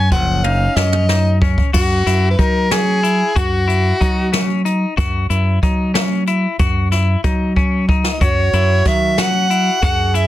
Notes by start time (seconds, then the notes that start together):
Already playing: F#2 G#5
0.11 F#1 F3 C#4 F#5, kick, closed hi-hat
0.44 D#4 F5, high tom
0.76 F#2 C#4 D#5, snare
0.93 mid tom
1.09 D#4, snare
1.42 C#4, kick
1.58 kick
1.73 F#2 F#4, kick, crash
2.06 F#2 E4, snare, closed hi-hat
2.31 B4
2.39 F#3 D#4 A#4, kick, closed hi-hat
2.71 C#4 G#4, snare, closed hi-hat
3.03 E4, closed hi-hat
3.36 F#2 F#4, kick, closed hi-hat
3.68 E4, closed hi-hat
4.01 F#3 D#4, kick, closed hi-hat
4.33 C#4, snare, closed hi-hat
4.65 D#4, closed hi-hat
4.97 F#2 F#4, kick, closed hi-hat
5.30 F#2 E4, closed hi-hat
5.63 F#3 D#4, kick, closed hi-hat
5.94 C#4, snare, closed hi-hat
6.27 E4, closed hi-hat
6.59 F#2 F#4, kick, closed hi-hat
6.92 E4, snare, closed hi-hat
7.24 F#3 D#4, kick, closed hi-hat
7.56 C#4, kick
7.89 D#4, kick
8.04 snare
8.13 D#5
8.19 F#2 F#4 C#5, kick, closed hi-hat
8.53 F#2 E4, closed hi-hat
8.85 D#3 F#3 E5, kick, snare, closed hi-hat
9.18 C#4 F#5, snare, closed hi-hat
9.50 E4, closed hi-hat
9.81 F#2 F#4 G#4 F#5, kick, closed hi-hat
10.14 E4 E5, closed hi-hat